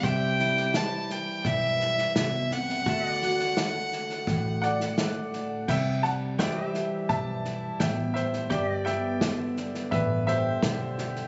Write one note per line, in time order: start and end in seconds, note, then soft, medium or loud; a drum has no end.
0.00 1.26 C2 medium
0.00 0.74 C3 medium
0.00 2.86 G3 medium
0.00 kick loud
0.00 snare soft
0.04 2.83 G4 medium
0.04 2.84 C5 medium
0.04 2.84 E5 medium
0.04 0.78 G5 loud
0.39 2.86 E4 medium
0.39 snare soft
0.57 snare soft
0.74 2.82 E3 medium
0.74 1.13 A5 medium
0.74 snare loud
0.74 hi-hat pedal medium
1.10 1.48 G5 medium
1.10 snare soft
1.45 2.05 B1 medium
1.45 2.82 G2 medium
1.45 2.16 E5 loud
1.45 kick loud
1.45 snare soft
1.80 snare soft
1.98 snare soft
2.16 2.76 C2 medium
2.16 2.50 B2 medium
2.16 2.54 E5 loud
2.16 snare loud
2.16 hi-hat pedal medium
2.51 2.86 C3 medium
2.51 4.99 F#5 loud
2.51 snare soft
2.69 snare soft
2.86 4.09 D2 medium
2.86 5.69 D3 medium
2.86 5.66 F#4 medium
2.86 5.66 A4 medium
2.86 3.14 E5 medium
2.86 kick loud
2.86 snare soft
3.14 5.67 D5 medium
3.22 5.65 F#4 medium
3.22 snare soft
3.39 snare soft
3.57 4.96 A3 medium
3.57 snare loud
3.57 hi-hat pedal medium
3.92 snare soft
4.10 snare soft
4.27 5.50 A1 medium
4.27 5.68 A2 medium
4.27 kick loud
4.27 snare soft
4.62 5.65 D5 medium
4.62 5.71 F#5 medium
4.62 snare soft
4.80 snare soft
4.97 5.64 A3 medium
4.97 snare loud
4.97 hi-hat pedal medium
5.33 5.65 D4 soft
5.33 snare soft
5.68 6.91 C2 medium
5.68 6.39 C3 medium
5.68 6.02 E5 medium
5.68 6.01 G5 medium
5.68 kick loud
5.68 snare soft
5.68 crash loud
6.03 8.87 G3 medium
6.03 6.12 F#5 medium
6.03 6.11 A5 loud
6.03 snare soft
6.39 8.46 E3 medium
6.39 6.59 F#4 medium
6.39 8.49 C5 medium
6.39 6.67 D5 medium
6.39 7.06 E5 medium
6.39 7.12 G5 loud
6.39 kick medium
6.39 snare loud
6.39 hi-hat pedal medium
6.59 8.49 G4 medium
6.67 8.50 E5 medium
6.74 snare soft
7.09 7.70 B1 medium
7.09 8.46 G2 medium
7.09 7.76 E5 medium
7.09 7.82 A5 loud
7.09 kick loud
7.09 snare soft
7.45 8.51 E4 medium
7.45 snare soft
7.80 8.40 A1 medium
7.80 8.15 B2 medium
7.80 8.12 E5 medium
7.80 8.16 G5 medium
7.80 kick medium
7.80 snare loud
7.80 hi-hat pedal medium
8.14 8.51 A2 medium
8.14 8.48 C5 medium
8.14 8.51 E5 medium
8.14 snare soft
8.33 snare soft
8.50 9.73 G1 medium
8.50 9.91 G2 medium
8.50 11.28 G4 medium
8.50 8.84 D5 medium
8.50 8.77 E5 medium
8.50 8.83 G5 loud
8.50 kick loud
8.50 snare soft
8.77 11.28 D5 medium
8.85 11.28 B3 medium
8.85 9.88 E5 medium
8.85 9.94 G5 medium
8.85 snare soft
9.21 10.62 D3 medium
9.21 kick medium
9.21 snare loud
9.21 hi-hat pedal medium
9.57 10.63 D4 medium
9.57 snare soft
9.74 snare soft
9.91 10.52 A1 medium
9.91 11.28 G2 medium
9.91 10.25 B4 medium
9.91 10.24 E5 medium
9.91 kick loud
9.91 snare soft
10.27 10.98 G4 medium
10.27 11.28 C5 medium
10.27 11.28 E5 medium
10.27 snare soft
10.63 11.23 B1 medium
10.63 11.28 D3 medium
10.63 11.28 D4 medium
10.63 kick medium
10.63 snare loud
10.63 hi-hat pedal medium
10.98 11.28 G4 medium
10.98 snare soft
11.16 snare soft